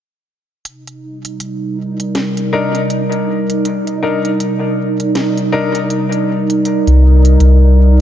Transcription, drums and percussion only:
0.65 closed hi-hat
0.87 closed hi-hat
1.25 closed hi-hat
1.40 closed hi-hat
2.00 closed hi-hat
2.15 snare, closed hi-hat
2.37 closed hi-hat
2.75 closed hi-hat
2.90 closed hi-hat
3.12 closed hi-hat
3.50 closed hi-hat
3.65 closed hi-hat
3.87 closed hi-hat
4.25 closed hi-hat
4.40 closed hi-hat
5.00 closed hi-hat
5.15 snare, closed hi-hat
5.37 closed hi-hat
5.75 closed hi-hat
5.90 closed hi-hat
6.12 closed hi-hat
6.50 closed hi-hat
6.65 closed hi-hat
6.87 closed hi-hat
7.25 closed hi-hat
7.40 closed hi-hat

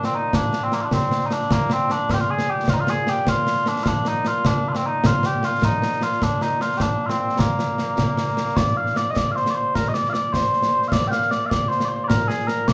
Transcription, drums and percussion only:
0.04 snare
0.33 concert bass drum, snare
0.53 snare
0.72 snare
0.91 concert bass drum, snare
1.11 snare
1.21 snare
1.31 snare
1.41 snare
1.51 concert bass drum, snare
1.70 snare
1.90 snare
2.09 concert bass drum, snare
2.39 snare
2.68 concert bass drum, snare
2.87 snare
3.07 snare
3.27 concert bass drum, snare
3.47 snare
3.57 snare
3.66 snare
3.76 snare
3.86 concert bass drum, snare
4.05 snare
4.25 snare
4.45 concert bass drum, snare
4.75 snare
5.04 concert bass drum, snare
5.23 snare
5.43 snare
5.62 concert bass drum, snare
5.82 snare
5.92 snare
6.02 snare
6.12 snare
6.22 concert bass drum, snare
6.41 snare
6.61 snare
6.80 concert bass drum, snare
7.10 snare
7.29 snare
7.39 concert bass drum, snare
7.59 snare
7.78 snare
7.98 concert bass drum, snare
8.17 snare
8.28 snare
8.37 snare
8.48 snare
8.57 concert bass drum, snare
8.67 snare
8.86 snare
8.96 snare
9.16 concert bass drum, snare
9.36 snare
9.46 snare
9.75 concert bass drum, snare
9.85 snare
9.94 snare
10.05 snare
10.14 snare
10.34 concert bass drum, snare
10.53 snare
10.62 snare
10.82 snare
10.92 concert bass drum, snare
11.02 snare
11.12 snare
11.22 snare
11.31 snare
11.51 concert bass drum, snare
11.71 snare
11.80 snare
12.10 concert bass drum, snare
12.20 snare
12.30 snare
12.39 snare
12.48 snare
12.68 concert bass drum, snare

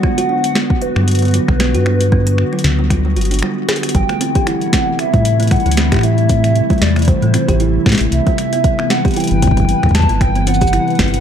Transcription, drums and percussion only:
0.03 finger snap, kick
0.18 closed hi-hat
0.44 closed hi-hat
0.55 snare
0.70 kick
0.82 closed hi-hat
0.96 finger snap
1.08 closed hi-hat
1.11 closed hi-hat
1.15 closed hi-hat
1.19 closed hi-hat
1.22 closed hi-hat
1.25 closed hi-hat
1.28 closed hi-hat
1.31 closed hi-hat
1.34 closed hi-hat
1.48 finger snap, kick
1.60 snare
1.75 closed hi-hat
1.86 finger snap
2.01 closed hi-hat
2.12 kick
2.27 closed hi-hat
2.38 finger snap
2.59 closed hi-hat
2.64 snare
2.90 finger snap, kick, closed hi-hat
3.16 closed hi-hat
3.21 closed hi-hat
3.25 closed hi-hat
3.31 closed hi-hat
3.34 closed hi-hat
3.39 finger snap, closed hi-hat
3.69 snare, closed hi-hat
3.76 closed hi-hat
3.83 finger snap, closed hi-hat
3.89 closed hi-hat
3.95 kick, closed hi-hat
4.09 finger snap, closed hi-hat
4.21 closed hi-hat
4.35 kick, closed hi-hat
4.47 finger snap, closed hi-hat
4.61 closed hi-hat
4.73 kick, snare, closed hi-hat
4.99 finger snap, closed hi-hat
5.14 kick, closed hi-hat
5.25 closed hi-hat
5.40 closed hi-hat
5.43 closed hi-hat
5.47 finger snap, closed hi-hat
5.51 kick, closed hi-hat
5.56 closed hi-hat
5.60 closed hi-hat
5.66 closed hi-hat
5.71 closed hi-hat
5.77 snare, shaker
5.92 finger snap, kick, closed hi-hat
5.94 finger snap
5.96 finger snap
5.99 finger snap
6.01 finger snap, closed hi-hat
6.18 closed hi-hat
6.29 kick, closed hi-hat, shaker
6.44 finger snap, closed hi-hat
6.56 closed hi-hat
6.70 kick, closed hi-hat
6.73 closed hi-hat
6.78 snare, closed hi-hat
6.82 closed hi-hat
6.90 closed hi-hat
6.96 finger snap, closed hi-hat
6.99 closed hi-hat
7.02 closed hi-hat
7.05 kick, closed hi-hat
7.08 closed hi-hat
7.22 closed hi-hat
7.34 finger snap, closed hi-hat
7.48 kick, closed hi-hat
7.60 closed hi-hat
7.86 finger snap, kick, snare
7.89 snare
7.92 snare
7.95 snare
7.98 snare, closed hi-hat
8.12 closed hi-hat
8.27 kick, closed hi-hat
8.38 finger snap, closed hi-hat
8.53 closed hi-hat
8.64 kick, closed hi-hat
8.79 finger snap
8.90 snare, closed hi-hat
9.05 kick, closed hi-hat
9.08 closed hi-hat
9.11 closed hi-hat
9.14 closed hi-hat
9.16 closed hi-hat
9.20 closed hi-hat
9.24 closed hi-hat
9.27 closed hi-hat
9.31 closed hi-hat
9.42 kick, closed hi-hat
9.47 kick
9.51 kick
9.57 kick, closed hi-hat
9.60 kick
9.65 kick, closed hi-hat
9.83 finger snap, kick, closed hi-hat
9.86 kick, closed hi-hat
9.91 kick
9.95 kick, snare, closed hi-hat
10.00 kick, closed hi-hat
10.03 kick
10.09 closed hi-hat
10.21 finger snap, kick, closed hi-hat
10.35 closed hi-hat
10.47 closed hi-hat, shaker
10.54 shaker
10.61 kick, closed hi-hat, shaker
10.67 shaker
10.73 finger snap, closed hi-hat
10.88 closed hi-hat
10.90 closed hi-hat
10.95 kick, snare, closed hi-hat
11.04 closed hi-hat
11.08 closed hi-hat
11.14 closed hi-hat

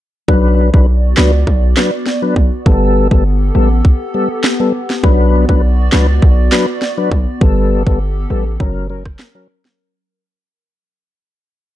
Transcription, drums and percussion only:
0.28 kick
0.74 kick
1.17 snare, clap
1.47 kick
1.77 snare, clap
2.06 snare
2.36 kick
2.66 kick
3.11 kick
3.85 kick
4.44 snare, clap
4.90 snare
5.04 kick
5.49 kick
5.92 snare, clap
6.22 kick
6.52 snare, clap
6.82 snare
7.12 kick
7.41 kick
7.87 kick
8.60 kick
9.05 kick, cross-stick
9.19 snare, clap
9.65 snare

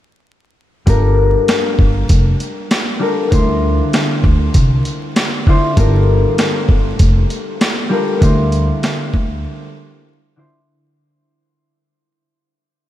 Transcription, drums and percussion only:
0.87 kick, closed hi-hat
1.48 snare, closed hi-hat
1.79 kick
2.09 kick, closed hi-hat
2.40 closed hi-hat
2.71 snare, closed hi-hat
3.32 kick, closed hi-hat
3.93 snare, closed hi-hat
4.24 kick
4.54 kick, closed hi-hat
4.85 closed hi-hat
5.16 snare, closed hi-hat
5.47 kick
5.77 kick, closed hi-hat
6.38 snare, closed hi-hat
6.69 kick
6.99 kick, closed hi-hat
7.30 closed hi-hat
7.61 snare, closed hi-hat
8.22 kick, closed hi-hat
8.52 closed hi-hat
8.83 snare, closed hi-hat
9.14 kick

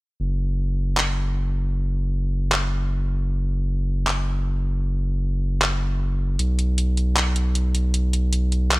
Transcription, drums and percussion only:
0.97 clap
2.52 clap
4.07 clap
5.62 clap
6.39 closed hi-hat
6.59 closed hi-hat
6.78 closed hi-hat
6.97 closed hi-hat
7.17 clap, closed hi-hat
7.36 closed hi-hat
7.55 closed hi-hat
7.75 closed hi-hat
7.94 closed hi-hat
8.13 closed hi-hat
8.33 closed hi-hat
8.52 closed hi-hat
8.71 clap, closed hi-hat

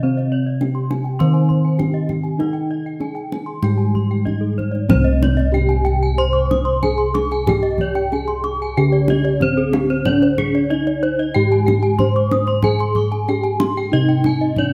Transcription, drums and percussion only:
0.19 kendang slap
0.61 kendang slap, kendang high
0.91 kendang high
1.06 kendang slap
1.20 kendang low
1.35 kendang slap
1.50 kendang slap, kendang low
1.79 kendang slap, kendang high, kendang low
2.09 kendang high, kendang low
2.25 kendang slap
2.40 kendang high
2.55 kendang slap
3.00 kendang slap, kendang high
3.16 kendang slap
3.32 kendang high
3.47 kendang slap
3.63 kendang slap, kendang high, kendang low
3.78 kendang slap
3.95 kendang slap, kendang low
4.27 kendang slap, kendang low
4.59 kendang slap, kendang low
4.75 kendang slap
4.90 kendang high, kendang low
5.07 kendang slap
5.23 kendang high, kendang low
5.39 kendang slap
5.55 kendang slap
5.70 kendang slap
5.86 kendang slap
6.51 kendang slap, kendang high, kendang low
6.83 kendang slap, kendang low
7.15 kendang slap, kendang high
7.31 kendang slap
7.47 kendang high, kendang low
7.63 kendang slap
7.78 kendang low
7.95 kendang slap
8.12 kendang slap
8.28 kendang slap
8.44 kendang slap
9.08 kendang slap, kendang high, kendang low
9.41 kendang slap, kendang low
9.73 kendang high
9.90 kendang slap
10.05 kendang high, kendang low
10.23 kendang slap
10.38 kendang high, kendang low
10.55 kendang slap
10.71 kendang slap
10.87 kendang slap
11.03 kendang slap
11.68 kendang slap, kendang high, kendang low
11.99 kendang slap, kendang low
12.31 kendang slap, kendang high
12.47 kendang slap
12.62 kendang high, kendang low
12.79 kendang slap
12.95 kendang low
13.12 kendang slap
13.28 kendang slap
13.45 kendang slap
13.60 kendang slap, kendang high
13.77 kendang slap
14.24 kendang slap, kendang high, kendang low
14.56 kendang slap, kendang low

